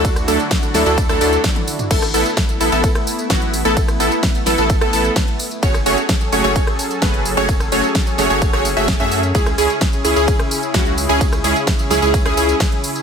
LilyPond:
<<
  \new Staff \with { instrumentName = "Digital synth lead" } { \time 4/4 \key a \major \tempo 4 = 129 r8 a'16 r8. a'16 a'8 a'16 a'8 r4 | a'16 r16 a'16 r8. a'16 a'8 r8. fis'8 r16 a'16 | r8 a'16 r8. a'16 a'8 a'16 a'8 r4 | cis''16 r16 cis''16 r8. cis''16 cis''8 r8. b'8 r16 cis''16 |
r8 cis''16 r8. cis''16 cis''8 cis''16 r16 e''16 r16 e''8 r16 | gis'16 r16 gis'16 r8. gis'16 gis'8 r8. fis'8 r16 gis'16 | r8 gis'16 r8. gis'16 gis'8 gis'16 gis'8 r4 | }
  \new Staff \with { instrumentName = "Supersaw synth" } { \time 4/4 \key a \major r8 <fis a d' e' a'>16 r8. <fis a d' e' a'>16 <fis a d' e' a'>8 <fis a d' e' a'>16 <fis a d' e' a'>8 r4 | <b e' a'>16 r16 <b e' a'>16 r8. <b e' a'>16 <b e' a'>8 r8. <b e' fis'>8 r16 <b e' a'>16 | r8 <b e' a'>16 r8. <b e' a'>16 <b e' a'>8 <b e' a'>16 <b e' a'>8 r4 | <a cis' fis' gis' cis''>16 r16 <a cis' fis' gis' cis''>16 r8. <a cis' fis' gis' cis''>16 <a cis' fis' gis' cis''>8 r8. <a cis' fis' gis' b'>8 r16 <a cis' fis' gis' cis''>16 |
r8 <a cis' fis' gis' cis''>16 r8. <a cis' fis' gis' cis''>16 <a cis' fis' gis' cis''>8 <a cis' fis' gis' cis''>16 r16 <a cis' fis' gis' e''>16 r16 <a cis' fis' gis' e''>8 r16 | <cis' e' gis'>16 r16 <cis' e' gis'>16 r8. <cis' e' gis'>16 <cis' e' gis'>8 r8. <cis' e' fis'>8 r16 <cis' e' gis'>16 | r8 <cis' e' gis'>16 r8. <cis' e' gis'>16 <cis' e' gis'>8 <cis' e' gis'>16 <cis' e' gis'>8 r4 | }
  \new Staff \with { instrumentName = "Analog synth pad" } { \time 4/4 \key a \major << { <d e' fis'>1 | <b e'>1~ | <b e'>1 | <fis gis' a'>1~ |
<fis gis' a'>1 | <cis e'>1~ | <cis e'>1 | } \\ { d'1 | a1~ | a1 | cis'1~ |
cis'1~ | cis'1~ | cis'1 | } >> }
  \new Staff \with { instrumentName = "Sub bass" } { \clef bass \time 4/4 \key a \major d,8 d,16 r8. d,16 d,8 d,16 d,16 r4 r16 | a,,8 a,,16 r8. a,,16 a,,16 r4 a,,8. a,,16~ | a,,8 a,,16 r8. a,,16 a,,8 a,,16 a,,16 r4 r16 | fis,,8 fis,,16 r8. fis,,16 fis,,16 r4 fis,,8. fis,,16~ |
fis,,8 fis,,16 r8. fis,,16 fis,,8 fis,,8 fis,,8 fis,8. | cis,8 cis,16 r8. cis,16 cis,16 r4 cis,8. cis,16~ | cis,8 cis,16 r8. cis,16 cis,8 cis,16 cis,16 r4 r16 | }
  \new DrumStaff \with { instrumentName = "Drums" } \drummode { \time 4/4 <hh bd cymr tamb>16 <hh ss tamb>16 <hho tamb>16 <hh tamb>16 <hh bd cymr sn tamb>16 <hh tamb>16 <hho sn tamb>16 <hh tamb>16 <hh bd cymr tamb>16 <hh ss tamb>16 <hho tamb>16 <hh tamb>16 <hh bd cymr sn tamb tommh>16 <hh tommh>16 <hho tamb>16 <hh tamb toml>16 | <cymc hh bd cymr tamb>16 <hh ss tamb>16 <hho tamb>16 <hh tamb>16 <hh bd cymr sn tamb>16 <hh tamb>16 <hho tamb>16 <hh tamb>16 <hh bd cymr tamb>16 <hh ss>16 <hho tamb>16 <hh tamb>16 <hh bd cymr sn tamb>16 hh16 <hho tamb>16 <hh tamb>16 | <hh bd cymr tamb>16 <hh ss tamb>16 <hho tamb>16 <hh tamb>16 <hh bd cymr sn tamb>16 <hh tamb>16 <hho sn tamb>16 <hh tamb>16 <hh bd cymr tamb>16 <hh ss>16 <hho tamb>16 <hh tamb>16 <hh bd cymr sn tamb>16 hh16 <hho tamb>16 <hh tamb>16 | <hh bd cymr tamb>16 <hh ss tamb>16 <hho tamb>16 <hh tamb>16 <hh bd cymr sn tamb>16 <hh tamb>16 <hho tamb>16 <hh tamb>16 <hh bd cymr tamb>16 <hh ss>16 <hho tamb>16 <hh tamb>16 <hh bd cymr sn tamb>16 hh16 <hho tamb>16 <hh tamb>16 |
<hh bd cymr tamb>16 <hh ss tamb>16 <hho tamb>16 <hh tamb>16 <hh bd cymr sn tamb>16 <hh tamb>16 <hho sn tamb>16 <hh tamb>16 <hh bd cymr tamb>16 <hh ss>16 <hho tamb>16 <hh tamb>16 <hh bd cymr sn tamb>16 <hh tamb>16 <hho tamb>16 <hh tamb>16 | <hh bd cymr tamb>16 <hh ss tamb>16 <hho tamb>16 <hh tamb>16 <hh bd cymr sn tamb>16 <hh tamb>16 <hho tamb>16 <hh tamb>16 <hh bd cymr tamb>16 <hh ss>16 <hho tamb>16 <hh tamb>16 <hh bd cymr sn tamb>16 hh16 <hho tamb>16 <hh tamb>16 | <hh bd cymr tamb>16 <hh ss tamb>16 <hho tamb>16 <hh tamb>16 <hh bd cymr sn tamb>16 <hh tamb>16 <hho sn tamb>16 <hh tamb>16 <hh bd cymr tamb>16 <hh ss>16 <hho tamb>16 <hh tamb>16 <hh bd cymr sn tamb>16 hh16 <hho tamb>16 <hh tamb>16 | }
>>